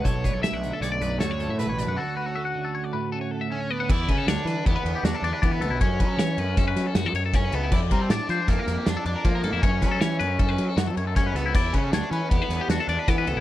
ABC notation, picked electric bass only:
X:1
M:5/4
L:1/16
Q:1/4=157
K:Edor
V:1 name="Picked electric bass" clef=bass
B,,,3 B,,, z B,,,2 z B,,,2 B,,,2 D,,3 A,,2 A,,,2 F,, | z16 z4 | E,,2 C,2 D,, z E, z E,, z E,, z E,, z E,, z E,2 D,, B,,, | F,,2 F,2 E,2 F,,2 F,,2 F, z F,, F, F,,4 C,,2 |
=F,,2 G,2 A,, z =F, z F,, z F,, z F,, z F,, z F,2 A,, F,, | F,,2 F,2 E,2 F,,2 F,,2 F, z F,, F, F,,4 C,,2 | E,,2 C,2 D,, z E, z E,, z E,, z E,, z E,, z E,2 D,, B,,, |]